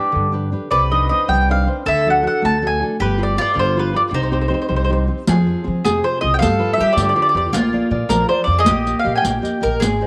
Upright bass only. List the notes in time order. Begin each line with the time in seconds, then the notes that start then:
0.16 G2
0.72 C2
1.29 C2
1.87 D2
2.44 D2
3.00 G1
3.57 G1
4.12 C2
4.70 C2
5.28 F2
5.67 F3
5.86 F2
6.24 C2
6.42 G2
6.80 G3
6.97 G2
7.35 F2
7.53 A#1
7.91 A#2
8.10 A#1
8.48 F2
8.67 A#1
9.06 A#2
9.25 A#1
9.65 A#1
9.82 G#1